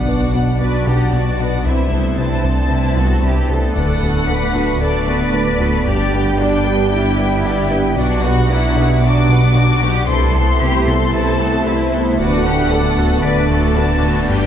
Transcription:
Already playing: double bass section B1, sub bass B1, trombone section B2 D4, analog synth pad B3 D4 B4 D5, french horn section D4 F#4, violin section F#5, impact
0.08 analog synth bass B3, viola section D4 F#4, violin section D5
0.34 analog synth bass B2, viola section B3 D4, violin section B4 F#5
0.60 analog synth bass B3, viola section D4 F#4, cello section B4, violin section D5
0.87 analog synth bass B2, viola section B3 D4, cello section G4, violin section B4 F#5
1.13 analog synth bass B2, viola section D4 F#4, cello section F#4, violin section D5
1.39 analog synth bass B2, viola section B3 D4, violin section B4 F#5
1.65 sub bass C2, analog synth bass C2, double bass section C2, trombone section C3, analog synth pad A3 C4 E5, french horn section C4 E4, viola section C4 E4, cello section E4, violin section B4 C5 E5
1.91 analog synth bass C2, viola section B3 C4, violin section A4 C5
2.18 analog synth bass C3, cello section C4, viola section C4 E4, violin section B4 C5 A5
2.44 analog synth bass C2, viola section B3 C4, violin section A4 C5
2.70 analog synth bass C3, viola section C4 E4, cello section E4, violin section B4 C5
2.97 analog synth bass C2, viola section B3 C4, cello section F#4, violin section A4 C5
3.23 analog synth bass C2, viola section C4 E4, cello section G4, violin section B4 C5
3.49 analog synth bass C2, viola section B3 C4, violin section A4 C5, cello section A4
3.74 sub bass D1, analog synth bass D2, double bass section D2, trombone section D3 A3, viola section A3 D4, french horn section B3 D4, analog synth pad D4 D5, violin section B4 D5 F#5
4.01 analog synth bass D2, viola section B3 F#4, violin section A4 B4
4.28 analog synth bass D3, viola section A3 D4, violin section B4 D5, cello section B4
4.55 analog synth bass D2, viola section B3 F#4, violin section A4 B4
4.81 analog synth bass D3, viola section A3 D4, cello section A4, violin section B4 D5
5.08 analog synth bass D2, viola section B3 F#4, violin section A4 B4, cello section B4
5.34 analog synth bass D2, viola section A3 D4, violin section B4 D5
5.60 analog synth bass D2, viola section B3 F#4, violin section A4 B4
5.87 double bass section G1, sub bass G1, analog synth bass G2, trombone section G3, viola section G3 D4, analog synth pad B3 G4, violin section G4 D5, cello section G4
6.13 analog synth bass G2, viola section B3 G4, violin section B4 G5
6.39 viola section G3 D4, analog synth bass G3, cello section D4, violin section G4 D5 G5
6.65 analog synth bass G2, viola section B3 G4, violin section B4 G5
6.92 analog synth bass G3, viola section G3 D4, cello section E4, violin section G4 D5
7.19 analog synth bass G2, viola section B3 G4, violin section B4 G5
7.45 analog synth bass G2, viola section G3 D4, violin section G4 D5
7.71 analog synth bass G2, viola section B3 G4, violin section B4 G5
7.97 sub bass B1, double bass section B1, analog synth bass B2, trombone section B2 B3, viola section F#3 D4, french horn section B3 D4, cello section D4, violin section F#4 D5 F#5
8.24 analog synth bass B2, viola section B3 F#4, cello section F#4, violin section B4 F#5
8.50 viola section F#3 D4, analog synth bass B3, cello section E4, violin section F#4 D5
8.76 analog synth bass B2, viola section B3 F#4, violin section B4 F#5
9.02 viola section F#3 D4, analog synth bass B3, cello section D4, violin section F#4 D5 D6
9.29 analog synth bass B2, viola section B3 F#4, violin section B4 F#5
9.55 analog synth bass B2, viola section F#3 D4, violin section F#4 D5, cello section F#4
9.82 analog synth bass B2, viola section B3 F#4, cello section G4, violin section B4 F#5
10.08 analog synth bass C2, double bass section C2, sub bass C2, trombone section C3 A3, analog synth pad C3 A3 E5, viola section C4 E4, french horn section E4, cello section A4, violin section B4 C5 C6
10.34 analog synth bass C2, viola section B3 C4, violin section A4 C5
10.61 analog synth bass C3, viola section C4 E4, cello section G4, violin section B4 C5
10.87 analog synth bass C2, viola section B3 C4, violin section A4 C5, cello section A4
11.13 analog synth bass C3, viola section C4 E4, violin section B4 C5 A5
11.40 analog synth bass C2, viola section B3 C4, violin section A4 C5
11.66 analog synth bass C2, viola section C4 E4, cello section E4, violin section B4 C5
11.93 analog synth bass C2, viola section B3 C4, violin section A4 C5
12.19 sub bass D1, analog synth bass D2, double bass section D2, trombone section D3, viola section A3 D4, french horn section B3 D4, analog synth pad D4 B4 D5, cello section F#4, violin section B4 D5 F#5, riser
12.45 analog synth bass D2, viola section B3 F#4, cello section G4, violin section A4 B4
12.71 analog synth bass D3, viola section A3 D4, cello section A4, violin section B4 D5
12.98 analog synth bass D2, viola section B3 F#4, violin section A4 B4
13.24 analog synth bass D3, viola section A3 D4, cello section B4, violin section B4 D5
13.50 analog synth bass D2, viola section B3 F#4, violin section A4 B4, cello section A4
13.76 analog synth bass D2, viola section A3 D4, cello section F#4, violin section B4 D5 A5
14.03 analog synth bass D2, viola section B3 F#4, violin section A4 B4
14.29 sub bass G1, double bass section G1, analog synth bass G2, analog synth pad G3, viola section G3 D4, trombone section G3, cello section G4, violin section B4 D5 G5

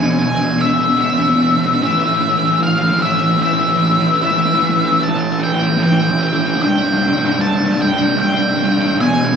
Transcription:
Already playing: lead electric guitar G#5
0.03 overdriven electric guitar E2 B2
0.11 overdriven electric guitar E2 B2
0.18 overdriven electric guitar E2 B2
0.23 overdriven electric guitar E2, lead electric guitar G#5
0.27 overdriven electric guitar B2
0.33 overdriven electric guitar E2 B2
0.42 overdriven electric guitar E2 B2
0.49 overdriven electric guitar E2 B2
0.57 overdriven electric guitar E2 B2
0.61 lead electric guitar E5
0.65 overdriven electric guitar E2 B2
0.73 overdriven electric guitar E2 B2
0.80 overdriven electric guitar E2 B2
0.88 overdriven electric guitar E2 B2
0.97 overdriven electric guitar E2 B2
1.01 overdriven electric guitar E2, lead electric guitar E5
1.05 overdriven electric guitar B2
1.11 overdriven electric guitar E2 B2
1.19 overdriven electric guitar E2 B2
1.27 overdriven electric guitar E2 B2
1.34 overdriven electric guitar E2 B2
1.42 overdriven electric guitar E2 B2
1.50 overdriven electric guitar E2 B2
1.57 overdriven electric guitar E2 B2
1.66 overdriven electric guitar E2 B2
1.73 overdriven electric guitar E2 B2
1.82 overdriven electric guitar A2 E3, lead electric guitar E5
1.89 overdriven electric guitar A2 E3
1.97 overdriven electric guitar A2 E3
2.04 overdriven electric guitar A2 E3
2.12 overdriven electric guitar A2 E3
2.20 overdriven electric guitar A2 E3
2.29 overdriven electric guitar A2 E3
2.36 overdriven electric guitar A2 E3
2.43 overdriven electric guitar A2 E3
2.51 overdriven electric guitar A2 E3
2.59 overdriven electric guitar A2 E3, lead electric guitar F5
2.67 overdriven electric guitar A2 E3
2.74 overdriven electric guitar A2 E3
2.81 overdriven electric guitar A2 E3
2.89 overdriven electric guitar A2 E3
2.98 overdriven electric guitar A2 E3
3.02 overdriven electric guitar A2 E3, lead electric guitar E5
3.13 overdriven electric guitar A2 E3
3.20 overdriven electric guitar A2 E3
3.29 overdriven electric guitar A2 E3
3.36 overdriven electric guitar A2 E3
3.42 overdriven electric guitar A2 E3, lead electric guitar E5
3.52 overdriven electric guitar A2 E3
3.60 overdriven electric guitar A2 E3
3.67 overdriven electric guitar A2 E3
3.74 overdriven electric guitar A2 E3
3.83 overdriven electric guitar A2 E3
3.90 overdriven electric guitar A2 E3
3.98 overdriven electric guitar A2 E3
4.06 overdriven electric guitar A2 E3
4.13 overdriven electric guitar A2 E3
4.22 overdriven electric guitar A2 E3, lead electric guitar E5
4.30 overdriven electric guitar A2 E3
4.37 overdriven electric guitar A2 E3
4.45 overdriven electric guitar A2 E3
4.52 overdriven electric guitar A2 E3
4.61 overdriven electric guitar A2 E3
4.69 overdriven electric guitar A2 E3
4.76 overdriven electric guitar A2 E3
4.84 overdriven electric guitar A2 E3
4.92 overdriven electric guitar A2 E3
5.00 overdriven electric guitar A2 E3, lead electric guitar A5
5.08 overdriven electric guitar A2 E3
5.14 overdriven electric guitar A2 E3
5.24 overdriven electric guitar A2 E3
5.30 overdriven electric guitar A2 E3
5.38 overdriven electric guitar A2 E3
5.43 overdriven electric guitar A2 E3, lead electric guitar G5
5.53 overdriven electric guitar A2 E3
5.61 overdriven electric guitar A2 E3
5.68 overdriven electric guitar A2 E3
5.76 overdriven electric guitar A2 E3
5.83 overdriven electric guitar A2 E3, lead electric guitar G5
5.91 overdriven electric guitar A2 E3
6.00 overdriven electric guitar A2 E3
6.08 overdriven electric guitar A2 E3
6.16 overdriven electric guitar A2 E3
6.23 overdriven electric guitar A2 E3
6.30 overdriven electric guitar A2 E3
6.38 overdriven electric guitar A2 E3
6.46 overdriven electric guitar A2 E3
6.55 overdriven electric guitar A2 E3
6.60 overdriven electric guitar C2 G2, lead electric guitar G5
6.68 overdriven electric guitar C2 G2
6.75 overdriven electric guitar C2 G2
6.83 overdriven electric guitar C2 G2
6.91 overdriven electric guitar C2 G2
6.99 overdriven electric guitar C2 G2
7.07 overdriven electric guitar C2 G2
7.15 overdriven electric guitar C2 G2
7.22 overdriven electric guitar C2 G2
7.31 overdriven electric guitar C2 G2
7.38 overdriven electric guitar C2 G2, lead electric guitar A5
7.46 overdriven electric guitar C2 G2
7.53 overdriven electric guitar C2 G2
7.61 overdriven electric guitar C2 G2
7.69 overdriven electric guitar C2 G2
7.77 overdriven electric guitar C2 G2
7.82 overdriven electric guitar C2 G2, lead electric guitar G5
7.92 overdriven electric guitar C2 G2
7.99 overdriven electric guitar C2 G2
8.08 overdriven electric guitar C2 G2
8.16 overdriven electric guitar C2 G2, lead electric guitar G5
8.23 overdriven electric guitar C2 G2
8.31 overdriven electric guitar C2 G2
8.38 overdriven electric guitar C2 G2
8.47 overdriven electric guitar C2 G2
8.55 overdriven electric guitar C2 G2
8.63 overdriven electric guitar C2 G2
8.70 overdriven electric guitar C2 G2
8.78 overdriven electric guitar C2 G2
8.85 overdriven electric guitar C2 G2
8.93 overdriven electric guitar C2 G2
9.00 overdriven electric guitar E2 B2, lead electric guitar G#5
9.09 overdriven electric guitar E2 B2
9.16 overdriven electric guitar E2 B2
9.23 overdriven electric guitar E2 B2
9.32 overdriven electric guitar E2 B2

